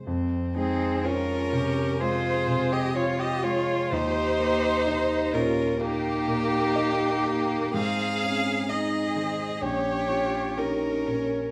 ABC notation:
X:1
M:4/4
L:1/16
Q:1/4=63
K:Fm
V:1 name="Viola"
z2 A2 B4 c3 e d e d2 | c6 B2 G8 | f4 e4 d4 B4 |]
V:2 name="Violin"
z2 A2 B4 c3 e d e d2 | c6 B2 G8 | f4 e4 d4 B4 |]
V:3 name="Violin"
z2 C2 D4 F3 G F G F2 | E6 D2 B,8 | A4 A4 G4 D4 |]
V:4 name="Cello"
C2 E2 F2 G2 A4 F4 | G4 E2 F2 E8 | C2 D2 E2 C2 D2 F2 E2 D2 |]
V:5 name="Grand piano"
F,,2 A,2 [Fc]2 C,2 A,2 C,2 [Fc]2 A,2 | E,,2 B,2 [Ge]2 B,,2 B,2 B,,2 [Ge]2 B,2 | A,,2 C2 [Ae]2 E,2 B,,,2 D2 [GB]2 B,,2 |]